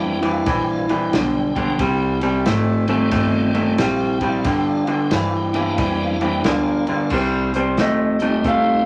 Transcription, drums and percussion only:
0, 0, Header, 1, 2, 480
1, 0, Start_track
1, 0, Tempo, 664452
1, 1301, Time_signature, 4, 2, 24, 8
1, 6398, End_track
2, 0, Start_track
2, 0, Title_t, "Drums"
2, 163, Note_on_c, 9, 51, 62
2, 236, Note_off_c, 9, 51, 0
2, 334, Note_on_c, 9, 51, 84
2, 337, Note_on_c, 9, 36, 114
2, 339, Note_on_c, 9, 38, 35
2, 406, Note_off_c, 9, 51, 0
2, 410, Note_off_c, 9, 36, 0
2, 411, Note_off_c, 9, 38, 0
2, 645, Note_on_c, 9, 51, 59
2, 717, Note_off_c, 9, 51, 0
2, 817, Note_on_c, 9, 51, 81
2, 822, Note_on_c, 9, 38, 113
2, 889, Note_off_c, 9, 51, 0
2, 894, Note_off_c, 9, 38, 0
2, 1124, Note_on_c, 9, 36, 77
2, 1128, Note_on_c, 9, 51, 59
2, 1197, Note_off_c, 9, 36, 0
2, 1200, Note_off_c, 9, 51, 0
2, 1293, Note_on_c, 9, 51, 86
2, 1296, Note_on_c, 9, 36, 101
2, 1365, Note_off_c, 9, 51, 0
2, 1368, Note_off_c, 9, 36, 0
2, 1598, Note_on_c, 9, 51, 60
2, 1603, Note_on_c, 9, 38, 33
2, 1670, Note_off_c, 9, 51, 0
2, 1676, Note_off_c, 9, 38, 0
2, 1775, Note_on_c, 9, 51, 83
2, 1780, Note_on_c, 9, 38, 110
2, 1847, Note_off_c, 9, 51, 0
2, 1852, Note_off_c, 9, 38, 0
2, 2078, Note_on_c, 9, 51, 62
2, 2151, Note_off_c, 9, 51, 0
2, 2249, Note_on_c, 9, 51, 92
2, 2253, Note_on_c, 9, 36, 106
2, 2254, Note_on_c, 9, 38, 35
2, 2321, Note_off_c, 9, 51, 0
2, 2325, Note_off_c, 9, 36, 0
2, 2326, Note_off_c, 9, 38, 0
2, 2561, Note_on_c, 9, 51, 61
2, 2634, Note_off_c, 9, 51, 0
2, 2732, Note_on_c, 9, 51, 94
2, 2737, Note_on_c, 9, 38, 115
2, 2804, Note_off_c, 9, 51, 0
2, 2809, Note_off_c, 9, 38, 0
2, 3040, Note_on_c, 9, 51, 63
2, 3041, Note_on_c, 9, 36, 74
2, 3112, Note_off_c, 9, 51, 0
2, 3113, Note_off_c, 9, 36, 0
2, 3211, Note_on_c, 9, 51, 91
2, 3215, Note_on_c, 9, 36, 111
2, 3216, Note_on_c, 9, 38, 32
2, 3283, Note_off_c, 9, 51, 0
2, 3287, Note_off_c, 9, 36, 0
2, 3288, Note_off_c, 9, 38, 0
2, 3519, Note_on_c, 9, 51, 61
2, 3591, Note_off_c, 9, 51, 0
2, 3690, Note_on_c, 9, 51, 83
2, 3695, Note_on_c, 9, 38, 108
2, 3763, Note_off_c, 9, 51, 0
2, 3768, Note_off_c, 9, 38, 0
2, 4001, Note_on_c, 9, 51, 64
2, 4073, Note_off_c, 9, 51, 0
2, 4175, Note_on_c, 9, 51, 86
2, 4177, Note_on_c, 9, 36, 114
2, 4247, Note_off_c, 9, 51, 0
2, 4249, Note_off_c, 9, 36, 0
2, 4485, Note_on_c, 9, 51, 59
2, 4557, Note_off_c, 9, 51, 0
2, 4653, Note_on_c, 9, 51, 81
2, 4658, Note_on_c, 9, 38, 107
2, 4726, Note_off_c, 9, 51, 0
2, 4731, Note_off_c, 9, 38, 0
2, 4962, Note_on_c, 9, 51, 59
2, 5034, Note_off_c, 9, 51, 0
2, 5130, Note_on_c, 9, 49, 97
2, 5137, Note_on_c, 9, 36, 104
2, 5202, Note_off_c, 9, 49, 0
2, 5210, Note_off_c, 9, 36, 0
2, 5446, Note_on_c, 9, 42, 63
2, 5518, Note_off_c, 9, 42, 0
2, 5615, Note_on_c, 9, 42, 77
2, 5620, Note_on_c, 9, 38, 99
2, 5688, Note_off_c, 9, 42, 0
2, 5693, Note_off_c, 9, 38, 0
2, 5922, Note_on_c, 9, 42, 62
2, 5994, Note_off_c, 9, 42, 0
2, 6099, Note_on_c, 9, 36, 109
2, 6099, Note_on_c, 9, 42, 83
2, 6171, Note_off_c, 9, 42, 0
2, 6172, Note_off_c, 9, 36, 0
2, 6398, End_track
0, 0, End_of_file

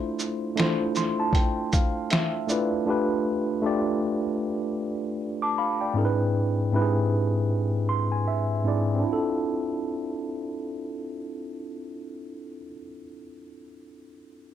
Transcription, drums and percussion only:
0, 0, Header, 1, 2, 480
1, 0, Start_track
1, 0, Tempo, 769231
1, 1794, Time_signature, 4, 2, 24, 8
1, 9074, End_track
2, 0, Start_track
2, 0, Title_t, "Drums"
2, 121, Note_on_c, 9, 82, 49
2, 183, Note_off_c, 9, 82, 0
2, 358, Note_on_c, 9, 42, 51
2, 371, Note_on_c, 9, 38, 100
2, 420, Note_off_c, 9, 42, 0
2, 434, Note_off_c, 9, 38, 0
2, 595, Note_on_c, 9, 82, 42
2, 607, Note_on_c, 9, 38, 36
2, 658, Note_off_c, 9, 82, 0
2, 669, Note_off_c, 9, 38, 0
2, 828, Note_on_c, 9, 36, 91
2, 841, Note_on_c, 9, 42, 74
2, 891, Note_off_c, 9, 36, 0
2, 903, Note_off_c, 9, 42, 0
2, 1078, Note_on_c, 9, 42, 47
2, 1078, Note_on_c, 9, 82, 49
2, 1081, Note_on_c, 9, 36, 98
2, 1140, Note_off_c, 9, 42, 0
2, 1140, Note_off_c, 9, 82, 0
2, 1144, Note_off_c, 9, 36, 0
2, 1313, Note_on_c, 9, 42, 65
2, 1328, Note_on_c, 9, 38, 114
2, 1376, Note_off_c, 9, 42, 0
2, 1390, Note_off_c, 9, 38, 0
2, 1555, Note_on_c, 9, 82, 51
2, 1617, Note_off_c, 9, 82, 0
2, 9074, End_track
0, 0, End_of_file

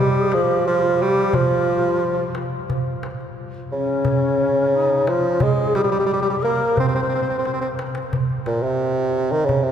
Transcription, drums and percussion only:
0, 0, Header, 1, 2, 480
1, 0, Start_track
1, 0, Tempo, 677966
1, 1912, Time_signature, 4, 2, 24, 8
1, 6880, End_track
2, 0, Start_track
2, 0, Title_t, "Darbuka"
2, 225, Note_on_c, 9, 63, 68
2, 295, Note_off_c, 9, 63, 0
2, 348, Note_on_c, 9, 62, 26
2, 418, Note_off_c, 9, 62, 0
2, 587, Note_on_c, 9, 62, 25
2, 658, Note_off_c, 9, 62, 0
2, 944, Note_on_c, 9, 64, 88
2, 1014, Note_off_c, 9, 64, 0
2, 1189, Note_on_c, 9, 62, 23
2, 1260, Note_off_c, 9, 62, 0
2, 1543, Note_on_c, 9, 62, 25
2, 1614, Note_off_c, 9, 62, 0
2, 1663, Note_on_c, 9, 63, 69
2, 1733, Note_off_c, 9, 63, 0
2, 1909, Note_on_c, 9, 64, 79
2, 1980, Note_off_c, 9, 64, 0
2, 2146, Note_on_c, 9, 63, 65
2, 2217, Note_off_c, 9, 63, 0
2, 2269, Note_on_c, 9, 62, 23
2, 2339, Note_off_c, 9, 62, 0
2, 2508, Note_on_c, 9, 62, 28
2, 2579, Note_off_c, 9, 62, 0
2, 2865, Note_on_c, 9, 64, 82
2, 2936, Note_off_c, 9, 64, 0
2, 3112, Note_on_c, 9, 62, 25
2, 3183, Note_off_c, 9, 62, 0
2, 3478, Note_on_c, 9, 62, 27
2, 3549, Note_off_c, 9, 62, 0
2, 3592, Note_on_c, 9, 63, 71
2, 3663, Note_off_c, 9, 63, 0
2, 3825, Note_on_c, 9, 64, 94
2, 3895, Note_off_c, 9, 64, 0
2, 3950, Note_on_c, 9, 62, 28
2, 4021, Note_off_c, 9, 62, 0
2, 4072, Note_on_c, 9, 63, 67
2, 4142, Note_off_c, 9, 63, 0
2, 4193, Note_on_c, 9, 62, 28
2, 4264, Note_off_c, 9, 62, 0
2, 4437, Note_on_c, 9, 62, 29
2, 4507, Note_off_c, 9, 62, 0
2, 4795, Note_on_c, 9, 64, 86
2, 4866, Note_off_c, 9, 64, 0
2, 5034, Note_on_c, 9, 62, 26
2, 5104, Note_off_c, 9, 62, 0
2, 5157, Note_on_c, 9, 62, 30
2, 5227, Note_off_c, 9, 62, 0
2, 5277, Note_on_c, 9, 63, 53
2, 5348, Note_off_c, 9, 63, 0
2, 5399, Note_on_c, 9, 62, 62
2, 5470, Note_off_c, 9, 62, 0
2, 5515, Note_on_c, 9, 63, 76
2, 5586, Note_off_c, 9, 63, 0
2, 5628, Note_on_c, 9, 62, 83
2, 5699, Note_off_c, 9, 62, 0
2, 5755, Note_on_c, 9, 64, 78
2, 5826, Note_off_c, 9, 64, 0
2, 5873, Note_on_c, 9, 62, 24
2, 5944, Note_off_c, 9, 62, 0
2, 5991, Note_on_c, 9, 63, 63
2, 6062, Note_off_c, 9, 63, 0
2, 6719, Note_on_c, 9, 64, 75
2, 6790, Note_off_c, 9, 64, 0
2, 6880, End_track
0, 0, End_of_file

